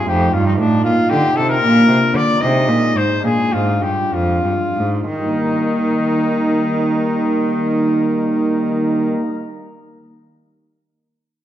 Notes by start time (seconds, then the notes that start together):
0.04 A3 D#4 F4 G4
0.08 F2
0.33 G2 F4
0.46 D#4
0.59 A2 D4
0.84 A#2 F4
1.10 D3 G4
1.36 C3 A4
1.49 A#4
1.58 A#2 A#3 D4 F4
1.62 A#2
1.88 C3
2.14 D3 D5
2.36 G#3 D#4 G#4
2.41 C3 D#5
2.68 A#2
2.96 G#2 C5
3.19 G#3 D4 F4
3.24 A#2 G#4
3.52 G#2 F4
3.82 G2 G4
4.12 F2 F4
4.43 G2
4.76 G#2
5.09 D#3 D#4
5.16 G3
5.23 A#3
5.30 D#4
5.37 A#4